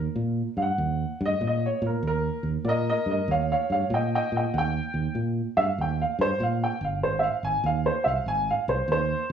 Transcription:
0.16 fingered electric bass A#2
0.57 fingered electric bass G2, upright piano F5
0.62 upright piano F#5
0.78 fingered electric bass D#2
1.21 fingered electric bass G2
1.25 upright piano D#5
1.41 fingered electric bass A#2
1.47 upright piano D#5
1.66 upright piano C#5
1.82 fingered electric bass A#2
1.87 upright piano A#4
2.03 fingered electric bass D#2
2.07 upright piano A#4
2.43 fingered electric bass D#2
2.64 fingered electric bass A#2, upright piano A#4 D5
2.69 upright piano D#5
2.90 upright piano A#4 D#5
3.06 fingered electric bass G2, upright piano A#4
3.11 upright piano D#5
3.28 fingered electric bass D#2, upright piano C#5 F5
3.52 upright piano C#5 F5
3.70 fingered electric bass G2, upright piano C#5 F5
3.90 fingered electric bass A#2, upright piano D#5
3.94 upright piano G5
4.15 upright piano D#5 G5
4.32 fingered electric bass A#2, upright piano D#5
4.37 upright piano G5
4.54 fingered electric bass D#2, upright piano F#5
4.58 upright piano G5
4.94 fingered electric bass D#2
5.15 fingered electric bass A#2
5.57 fingered electric bass G2, upright piano E5
5.61 upright piano F5
5.78 fingered electric bass D#2, upright piano G5
6.02 upright piano F5
6.19 fingered electric bass G2, upright piano C5
6.40 fingered electric bass A#2, upright piano F5
6.64 upright piano G5
6.81 fingered electric bass G1, upright piano F5
7.02 fingered electric bass G#1, upright piano C5
7.19 upright piano E5 F5
7.43 fingered electric bass G#1, upright piano G#5
7.64 fingered electric bass D#2, upright piano F5
7.86 upright piano C5
8.04 fingered electric bass C2, upright piano E5 F5
8.26 fingered electric bass G#1, upright piano G#5
8.50 upright piano F5
8.68 fingered electric bass C2, upright piano C5
8.88 fingered electric bass D#2, upright piano C5

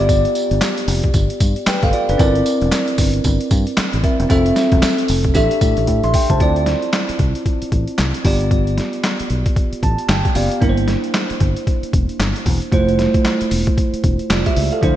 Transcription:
Already playing: fingered electric bass G1, tine electric piano B3 F4 G4 D5
0.09 kick, closed hi-hat, tambourine
0.25 closed hi-hat
0.35 closed hi-hat, tambourine
0.51 fingered electric bass G1, closed hi-hat
0.61 snare, clap, closed hi-hat, tambourine
0.78 closed hi-hat
0.88 fingered electric bass F1, open hi-hat, tambourine
1.03 kick, closed hi-hat
1.14 fingered electric bass G1, kick, closed hi-hat, tambourine
1.30 closed hi-hat
1.40 fingered electric bass G2, kick, closed hi-hat, tambourine
1.56 closed hi-hat
1.66 tine electric piano B4 G5, muted fingered electric bass stroke, snare, clap, closed hi-hat, tambourine
1.82 fingered electric bass G1, tine electric piano A4 F5, kick, closed hi-hat
1.93 tine electric piano F4 D5, closed hi-hat
2.09 fingered electric bass F#1, tine electric piano D4 B4, closed hi-hat
2.18 fingered electric bass G1, tine electric piano C4 E4 A#4 D5, kick, closed hi-hat, tambourine
2.35 closed hi-hat
2.46 closed hi-hat, tambourine
2.61 fingered electric bass E1, closed hi-hat
2.72 snare, clap, closed hi-hat, tambourine
2.88 closed hi-hat
2.98 fingered electric bass G1, kick, open hi-hat, tambourine
3.14 closed hi-hat
3.24 fingered electric bass G1, kick, closed hi-hat, tambourine
3.41 closed hi-hat
3.51 fingered electric bass G2, kick, closed hi-hat, tambourine
3.67 closed hi-hat
3.77 muted fingered electric bass stroke, snare, clap, closed hi-hat, tambourine
3.93 fingered electric bass A1, closed hi-hat
4.03 tine electric piano C4 E4 A#4 E5, kick, closed hi-hat
4.20 fingered electric bass E1, closed hi-hat
4.29 fingered electric bass F1, tine electric piano C4 F4 A4 E5, kick, closed hi-hat, tambourine
4.46 closed hi-hat
4.56 snare, closed hi-hat, tambourine
4.72 fingered electric bass E1, kick, closed hi-hat
4.82 snare, clap, closed hi-hat, tambourine
4.98 closed hi-hat
5.08 fingered electric bass F1, open hi-hat, tambourine
5.24 kick, closed hi-hat
5.34 fingered electric bass A1, tine electric piano D4 G4 A4 E5, kick, closed hi-hat, tambourine
5.51 closed hi-hat
5.61 fingered electric bass A2, kick, closed hi-hat, tambourine
5.77 fingered electric bass A1, closed hi-hat
5.87 fingered electric bass A2, kick, closed hi-hat
6.03 fingered electric bass A1, tine electric piano E5 C6, closed hi-hat
6.14 tine electric piano G5, kick, open hi-hat
6.30 fingered electric bass C#2, tine electric piano C5 A5, kick, closed hi-hat
6.40 fingered electric bass D2, tine electric piano C4 E4 F4 D5, kick, closed hi-hat
6.56 closed hi-hat
6.66 snare, closed hi-hat
6.82 closed hi-hat
6.93 snare, clap, closed hi-hat
7.09 muted fingered electric bass stroke, closed hi-hat
7.19 fingered electric bass C2, kick, closed hi-hat
7.35 closed hi-hat
7.46 kick, closed hi-hat
7.62 muted fingered electric bass stroke, closed hi-hat
7.72 fingered electric bass A1, kick, closed hi-hat
7.88 closed hi-hat
7.98 fingered electric bass C2, snare, clap, closed hi-hat
8.14 closed hi-hat
8.24 fingered electric bass G1, tine electric piano B3 F4 G4 D5, kick, open hi-hat
8.41 closed hi-hat
8.51 kick, closed hi-hat
8.67 closed hi-hat
8.78 snare, closed hi-hat
8.93 closed hi-hat
9.04 snare, clap, closed hi-hat
9.20 muted fingered electric bass stroke, closed hi-hat
9.30 fingered electric bass B1, closed hi-hat
9.46 kick, closed hi-hat
9.56 kick, closed hi-hat
9.73 muted fingered electric bass stroke, closed hi-hat
9.83 fingered electric bass A1, tine electric piano A5, kick, closed hi-hat
9.98 closed hi-hat
10.09 fingered electric bass G1, tine electric piano G5, snare, clap, closed hi-hat
10.25 kick, closed hi-hat
10.35 fingered electric bass F#1, tine electric piano B3 F4 G4 D5 F5, open hi-hat
10.51 closed hi-hat
10.61 fingered electric bass G1, tine electric piano A#3 D4 E4 A#4, kick, closed hi-hat
10.69 tine electric piano C5
10.77 closed hi-hat
10.88 snare, closed hi-hat
11.04 closed hi-hat
11.14 snare, clap, closed hi-hat
11.30 muted fingered electric bass stroke, closed hi-hat
11.40 fingered electric bass G1, kick, closed hi-hat
11.56 closed hi-hat
11.67 kick, closed hi-hat
11.83 muted fingered electric bass stroke, closed hi-hat
11.93 fingered electric bass E1, kick, closed hi-hat
12.09 closed hi-hat
12.19 fingered electric bass G1, snare, clap, closed hi-hat
12.36 closed hi-hat
12.46 fingered electric bass E1, kick, open hi-hat
12.62 closed hi-hat
12.72 fingered electric bass F1, tine electric piano A3 E4 F4 C5, kick, closed hi-hat
12.89 closed hi-hat
12.99 snare, closed hi-hat
13.14 kick, closed hi-hat
13.25 snare, clap, closed hi-hat
13.41 muted fingered electric bass stroke, closed hi-hat
13.51 fingered electric bass E1, open hi-hat
13.67 kick, closed hi-hat
13.78 kick, closed hi-hat
13.93 muted fingered electric bass stroke, closed hi-hat
14.04 fingered electric bass E1, kick, closed hi-hat
14.19 closed hi-hat
14.30 fingered electric bass F1, tine electric piano F4 D5, snare, clap, closed hi-hat
14.46 tine electric piano G4 E5, kick, closed hi-hat
14.56 fingered electric bass C#2, open hi-hat
14.72 tine electric piano A4 F5, closed hi-hat
14.81 fingered electric bass D2, tine electric piano F3 D4 E4 C5, kick, closed hi-hat

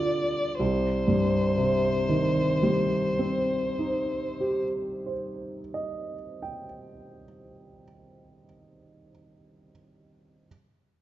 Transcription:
Already playing: grand piano G2 D3 G3 F4 B4, violin D5
0.59 grand piano C2, violin C5
1.08 grand piano G2
1.57 grand piano C3
2.09 grand piano D#3
2.63 grand piano G3
3.19 grand piano C4
3.79 grand piano D#4
4.40 grand piano G4
5.06 grand piano C5
5.74 grand piano D#5
6.42 grand piano G5

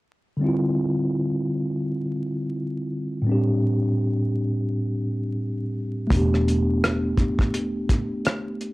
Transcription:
0.37 tine electric piano D3 G3
0.41 tine electric piano C4 E4
0.46 tine electric piano F4
3.22 tine electric piano A2 G3
3.27 tine electric piano C4 D4
3.32 tine electric piano G4
6.07 fingered electric bass E1, tine electric piano A3 B3, kick
6.12 tine electric piano D4, closed hi-hat
6.17 tine electric piano G4
6.34 cross-stick
6.48 closed hi-hat
6.84 cross-stick, closed hi-hat
7.17 kick, closed hi-hat
7.39 kick, cross-stick
7.54 closed hi-hat
7.89 kick, closed hi-hat
8.25 cross-stick, closed hi-hat
8.61 closed hi-hat

